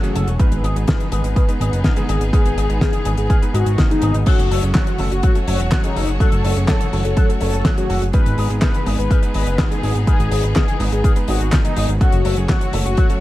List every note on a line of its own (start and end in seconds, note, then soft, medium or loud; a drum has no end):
0.00 0.36 F#3 medium
0.00 0.24 F#3 loud
0.00 0.24 A3 medium
0.00 0.24 C#4 medium
0.00 0.36 F#4 medium
0.00 0.29 F#4 loud
0.00 0.24 G#4 loud
0.00 0.36 A4 medium
0.00 0.36 C#5 medium
0.00 closed hi-hat medium
0.15 0.26 F#1 loud
0.15 0.27 A4 medium
0.15 closed hi-hat loud
0.27 0.38 E1 medium
0.27 0.35 C#4 medium
0.27 closed hi-hat medium
0.39 0.47 D#3 loud
0.39 0.73 G#3 medium
0.39 0.73 B3 medium
0.39 4.23 B3 medium
0.39 0.73 D#4 medium
0.39 4.23 D#4 medium
0.39 4.23 G#4 medium
0.39 0.73 B4 medium
0.39 0.74 B4 loud
0.39 kick loud
0.39 closed hi-hat medium
0.52 0.62 G#1 medium
0.52 closed hi-hat medium
0.64 0.74 G#1 medium
0.64 0.75 G#4 medium
0.64 closed hi-hat medium
0.76 0.86 G#1 medium
0.76 0.89 G#3 medium
0.76 0.89 B3 medium
0.76 0.84 B3 medium
0.76 0.89 D#4 medium
0.76 0.89 G#4 medium
0.76 closed hi-hat medium
0.88 0.96 D#3 loud
0.88 1.14 B4 medium
0.88 kick loud
0.88 snare loud
0.88 closed hi-hat medium
1.00 closed hi-hat medium
1.12 1.23 G#1 loud
1.12 1.45 G#3 medium
1.12 1.45 B3 medium
1.12 1.45 D#4 medium
1.12 1.24 G#4 medium
1.12 1.45 B4 medium
1.12 closed hi-hat loud
1.24 1.35 G#1 medium
1.24 1.32 B3 medium
1.24 1.50 B4 medium
1.24 closed hi-hat medium
1.36 1.44 D#3 loud
1.36 kick loud
1.36 closed hi-hat medium
1.48 1.61 G#3 medium
1.48 1.61 B3 medium
1.48 1.61 D#4 medium
1.48 1.61 B4 loud
1.48 closed hi-hat soft
1.60 1.71 G#1 medium
1.60 1.72 G#4 medium
1.60 1.86 B4 medium
1.60 closed hi-hat medium
1.73 1.83 F#1 medium
1.73 1.80 B3 medium
1.73 closed hi-hat medium
1.84 1.93 D#3 loud
1.84 kick loud
1.84 snare loud
1.84 closed hi-hat medium
1.96 2.18 G#3 loud
1.96 2.18 B3 medium
1.96 2.18 D#4 medium
1.96 2.18 G#4 loud
1.96 2.23 G#4 loud
1.96 closed hi-hat medium
2.09 2.19 G#1 medium
2.09 2.20 G#4 medium
2.09 closed hi-hat loud
2.21 2.31 G#1 medium
2.21 2.29 B3 medium
2.21 closed hi-hat medium
2.33 2.41 D#3 loud
2.33 2.66 G#3 medium
2.33 2.66 B3 medium
2.33 2.66 D#4 medium
2.33 2.68 G#4 loud
2.33 2.66 B4 medium
2.33 kick loud
2.33 closed hi-hat medium
2.45 2.56 G#1 medium
2.45 closed hi-hat medium
2.57 2.68 G#1 medium
2.57 2.69 G#4 medium
2.57 closed hi-hat medium
2.69 2.80 G#1 medium
2.69 2.82 G#3 medium
2.69 2.82 B3 medium
2.69 2.77 B3 medium
2.69 2.82 D#4 medium
2.69 2.82 G#4 medium
2.69 closed hi-hat soft
2.81 2.89 D#3 loud
2.81 3.07 G#4 loud
2.81 kick loud
2.81 snare loud
2.81 closed hi-hat medium
2.93 closed hi-hat medium
3.05 3.16 G#1 medium
3.05 3.39 G#3 medium
3.05 3.39 B3 medium
3.05 3.39 D#4 medium
3.05 3.17 G#4 medium
3.05 3.39 B4 medium
3.05 closed hi-hat loud
3.17 3.28 G#1 medium
3.17 3.26 B3 medium
3.17 3.44 G#4 medium
3.17 closed hi-hat medium
3.30 3.38 D#3 loud
3.30 kick loud
3.30 closed hi-hat medium
3.42 3.52 G#3 medium
3.42 3.52 B3 medium
3.42 3.52 D#4 medium
3.42 3.52 B4 loud
3.42 closed hi-hat medium
3.54 3.65 G#1 loud
3.54 3.67 G#3 medium
3.54 3.67 B3 medium
3.54 3.67 D#4 medium
3.54 3.80 F#4 loud
3.54 3.66 G#4 medium
3.54 3.67 D#5 medium
3.54 closed hi-hat loud
3.66 3.77 G#1 medium
3.66 3.74 B3 medium
3.66 closed hi-hat medium
3.78 3.86 D#3 loud
3.78 kick loud
3.78 snare loud
3.78 closed hi-hat medium
3.90 4.24 G#3 medium
3.90 4.24 B3 medium
3.90 4.24 D#4 medium
3.90 4.16 D#4 loud
3.90 4.24 G#4 medium
3.90 closed hi-hat soft
4.02 4.13 G#1 loud
4.02 4.14 G#4 medium
4.02 closed hi-hat medium
4.14 4.25 G#1 medium
4.14 4.22 B3 medium
4.14 closed hi-hat soft
4.26 4.60 F#3 medium
4.26 8.10 F#3 medium
4.26 4.35 F#3 loud
4.26 4.60 A3 medium
4.26 8.10 A3 medium
4.26 4.60 C#4 medium
4.26 4.61 F#4 loud
4.26 8.10 F#4 medium
4.26 4.60 A4 medium
4.26 8.10 C#5 medium
4.26 kick loud
4.26 closed hi-hat medium
4.26 crash loud
4.39 4.49 F#1 medium
4.39 closed hi-hat medium
4.51 4.61 F#1 medium
4.51 4.62 A4 medium
4.51 open hi-hat loud
4.63 4.73 F#1 medium
4.63 4.76 F#3 medium
4.63 4.76 A3 medium
4.63 4.76 C#4 medium
4.63 4.71 C#4 medium
4.63 4.76 G#4 medium
4.63 closed hi-hat medium
4.75 4.83 F#3 loud
4.75 5.01 F#4 loud
4.75 kick loud
4.75 snare loud
4.75 clap medium
4.75 closed hi-hat medium
4.87 closed hi-hat medium
4.98 5.10 F#1 medium
4.98 5.33 F#3 medium
4.98 5.33 A3 medium
4.98 5.33 C#4 medium
4.98 5.33 A4 medium
4.98 5.11 A4 medium
4.98 open hi-hat medium
5.11 5.22 F#1 medium
5.11 5.19 C#4 medium
5.11 5.37 F#4 loud
5.11 closed hi-hat medium
5.23 5.31 F#3 loud
5.23 kick loud
5.23 closed hi-hat medium
5.35 5.45 F#3 medium
5.35 5.45 A3 medium
5.35 5.45 C#4 medium
5.35 5.45 A4 medium
5.35 closed hi-hat medium
5.48 5.58 F#1 medium
5.48 5.61 F#3 medium
5.48 5.61 A3 medium
5.48 5.61 C#4 medium
5.48 5.73 F#4 loud
5.48 5.59 A4 medium
5.48 5.61 C#5 medium
5.48 open hi-hat loud
5.60 5.70 E1 medium
5.60 5.68 C#4 medium
5.60 closed hi-hat medium
5.71 5.80 F#3 loud
5.71 kick loud
5.71 snare loud
5.71 clap medium
5.71 closed hi-hat medium
5.84 6.17 F#3 medium
5.84 6.17 A3 medium
5.84 6.17 C#4 medium
5.84 6.10 D#4 loud
5.84 6.17 G#4 medium
5.84 closed hi-hat medium
5.96 6.06 F#1 loud
5.96 6.08 A4 medium
5.96 open hi-hat loud
6.07 6.19 F#1 medium
6.07 6.16 C#4 medium
6.07 closed hi-hat medium
6.20 6.54 F#3 medium
6.20 6.28 F#3 loud
6.20 6.54 A3 medium
6.20 6.54 C#4 medium
6.20 6.55 A4 loud
6.20 6.54 A4 medium
6.20 kick loud
6.20 closed hi-hat medium
6.32 6.43 F#1 medium
6.32 closed hi-hat medium
6.44 6.55 F#1 medium
6.44 6.56 A4 medium
6.44 open hi-hat loud
6.56 6.67 F#1 medium
6.56 6.70 F#3 medium
6.56 6.70 A3 medium
6.56 6.70 C#4 medium
6.56 6.64 C#4 medium
6.56 6.70 G#4 medium
6.56 closed hi-hat soft
6.68 6.76 F#3 loud
6.68 6.94 A4 medium
6.68 kick loud
6.68 snare loud
6.68 clap loud
6.68 closed hi-hat medium
6.81 closed hi-hat medium
6.93 7.03 F#1 loud
6.93 7.26 F#3 medium
6.93 7.26 A3 medium
6.93 7.26 C#4 medium
6.93 7.26 A4 medium
6.93 7.04 A4 medium
6.93 open hi-hat loud
7.05 7.15 F#1 medium
7.05 7.13 C#4 medium
7.05 7.31 A4 loud
7.05 closed hi-hat medium
7.17 7.25 F#3 loud
7.17 kick loud
7.17 closed hi-hat medium
7.29 7.39 F#3 medium
7.29 7.39 A3 medium
7.29 7.39 C#4 medium
7.29 7.39 A4 medium
7.29 closed hi-hat medium
7.41 7.52 F#1 medium
7.41 7.54 F#3 medium
7.41 7.54 A3 medium
7.41 7.54 C#4 medium
7.41 7.67 A4 medium
7.41 7.53 A4 medium
7.41 7.54 C#5 medium
7.41 open hi-hat loud
7.53 7.64 F#1 medium
7.53 7.61 C#4 medium
7.53 closed hi-hat medium
7.65 7.73 F#3 loud
7.65 kick loud
7.65 snare loud
7.65 clap medium
7.65 closed hi-hat medium
7.77 8.11 F#3 medium
7.77 8.11 A3 medium
7.77 8.11 C#4 medium
7.77 8.03 F#4 loud
7.77 8.11 G#4 medium
7.77 closed hi-hat medium
7.90 8.00 F#1 medium
7.90 8.01 A4 medium
7.90 open hi-hat medium
8.02 8.12 F#1 medium
8.02 8.09 C#4 medium
8.02 closed hi-hat soft
8.13 8.22 D#3 loud
8.13 8.47 G#3 medium
8.13 11.97 B3 medium
8.13 8.47 B3 medium
8.13 11.97 D#4 medium
8.13 8.47 D#4 medium
8.13 11.97 G#4 medium
8.13 8.48 B4 loud
8.13 8.47 B4 medium
8.13 kick loud
8.13 closed hi-hat medium
8.26 8.36 G#1 medium
8.26 closed hi-hat medium
8.38 8.48 G#1 medium
8.38 8.50 G#4 medium
8.38 open hi-hat medium
8.50 8.61 G#1 medium
8.50 8.63 G#3 medium
8.50 8.63 B3 medium
8.50 8.58 B3 medium
8.50 8.63 D#4 medium
8.50 8.63 G#4 medium
8.50 closed hi-hat medium
8.61 8.70 D#3 loud
8.61 8.88 B4 medium
8.61 kick loud
8.61 snare loud
8.61 clap medium
8.61 closed hi-hat medium
8.74 closed hi-hat medium
8.86 8.97 G#1 loud
8.86 9.20 G#3 medium
8.86 9.20 B3 medium
8.86 9.20 D#4 medium
8.86 8.98 G#4 medium
8.86 9.20 B4 medium
8.86 open hi-hat medium
8.98 9.09 G#1 medium
8.98 9.06 B3 medium
8.98 9.24 B4 loud
8.98 closed hi-hat medium
9.11 9.18 D#3 loud
9.11 kick loud
9.11 closed hi-hat medium
9.23 9.32 G#3 medium
9.23 9.32 B3 medium
9.23 9.32 D#4 medium
9.23 9.32 B4 loud
9.23 closed hi-hat medium
9.34 9.45 G#1 loud
9.34 9.48 G#3 medium
9.34 9.48 B3 medium
9.34 9.48 D#4 medium
9.34 9.46 G#4 medium
9.34 9.61 B4 loud
9.34 9.48 D#5 medium
9.34 open hi-hat loud
9.46 9.57 F#1 medium
9.46 9.55 B3 medium
9.46 closed hi-hat medium
9.58 9.67 D#3 loud
9.58 kick loud
9.58 snare loud
9.58 clap loud
9.58 closed hi-hat medium
9.71 10.04 G#3 medium
9.71 10.04 B3 medium
9.71 10.04 D#4 medium
9.71 9.97 G#4 loud
9.71 10.04 G#4 medium
9.71 closed hi-hat medium
9.83 9.94 G#1 medium
9.83 9.95 G#4 medium
9.83 open hi-hat medium
9.95 10.06 G#1 medium
9.95 10.03 B3 medium
9.95 closed hi-hat soft
10.07 10.15 D#3 loud
10.07 10.41 G#3 medium
10.07 10.41 B3 medium
10.07 10.41 D#4 medium
10.07 10.42 G#4 loud
10.07 10.41 B4 medium
10.07 kick loud
10.07 closed hi-hat medium
10.20 10.30 G#1 medium
10.20 closed hi-hat medium
10.32 10.42 G#1 medium
10.32 10.43 G#4 medium
10.32 open hi-hat loud
10.43 10.54 G#1 medium
10.43 10.57 G#3 medium
10.43 10.57 B3 medium
10.43 10.51 B3 medium
10.43 10.57 D#4 medium
10.43 10.57 G#4 medium
10.43 closed hi-hat soft
10.55 10.64 D#3 loud
10.55 10.82 G#4 medium
10.55 kick loud
10.55 snare loud
10.55 clap medium
10.55 closed hi-hat medium
10.68 closed hi-hat medium
10.80 10.90 G#1 loud
10.80 11.13 G#3 medium
10.80 11.13 B3 medium
10.80 11.13 D#4 medium
10.80 10.92 G#4 medium
10.80 11.13 B4 medium
10.80 open hi-hat medium
10.92 11.03 G#1 medium
10.92 11.00 B3 medium
10.92 11.18 G#4 medium
10.92 closed hi-hat medium
11.04 11.12 D#3 loud
11.04 kick loud
11.04 closed hi-hat medium
11.16 11.26 G#3 medium
11.16 11.26 B3 medium
11.16 11.26 D#4 medium
11.16 11.26 B4 medium
11.16 closed hi-hat medium
11.28 11.39 G#1 loud
11.28 11.41 G#3 medium
11.28 11.41 B3 medium
11.28 11.41 D#4 medium
11.28 11.54 F#4 medium
11.28 11.40 G#4 medium
11.28 11.41 D#5 medium
11.28 open hi-hat loud
11.40 11.51 G#1 medium
11.40 11.48 B3 medium
11.40 closed hi-hat medium
11.52 11.60 D#3 loud
11.52 kick loud
11.52 snare loud
11.52 clap loud
11.52 closed hi-hat medium
11.65 11.98 G#3 medium
11.65 11.98 B3 medium
11.65 11.98 D#4 medium
11.65 11.90 D#4 loud
11.65 11.98 G#4 medium
11.65 closed hi-hat medium
11.76 11.87 G#1 loud
11.76 11.88 G#4 medium
11.76 open hi-hat loud
11.89 11.99 G#1 medium
11.89 11.97 B3 medium
11.89 closed hi-hat soft
12.01 12.34 F#3 medium
12.01 13.20 F#3 medium
12.01 12.09 F#3 loud
12.01 12.34 A3 medium
12.01 13.20 A3 medium
12.01 12.34 C#4 medium
12.01 12.35 F#4 loud
12.01 13.20 F#4 medium
12.01 12.34 A4 medium
12.01 13.20 C#5 medium
12.01 kick loud
12.01 closed hi-hat medium
12.12 12.23 F#1 medium
12.12 closed hi-hat medium
12.25 12.36 F#1 medium
12.25 12.37 A4 medium
12.25 open hi-hat loud
12.37 12.48 F#1 medium
12.37 12.50 F#3 medium
12.37 12.50 A3 medium
12.37 12.50 C#4 medium
12.37 12.45 C#4 medium
12.37 12.50 G#4 medium
12.37 closed hi-hat soft
12.49 12.57 F#3 loud
12.49 12.75 F#4 loud
12.49 kick loud
12.49 snare loud
12.49 clap medium
12.49 closed hi-hat medium
12.61 closed hi-hat medium
12.73 12.84 F#1 loud
12.73 13.07 F#3 medium
12.73 13.07 A3 medium
12.73 13.07 C#4 medium
12.73 13.07 A4 medium
12.73 12.85 A4 medium
12.73 open hi-hat loud
12.85 12.96 F#1 medium
12.85 12.93 C#4 medium
12.85 13.11 F#4 medium
12.85 closed hi-hat medium
12.97 13.06 F#3 loud
12.97 kick loud
12.97 closed hi-hat medium
13.10 13.19 F#3 medium
13.10 13.19 A3 medium
13.10 13.19 C#4 medium
13.10 13.19 A4 medium
13.10 closed hi-hat medium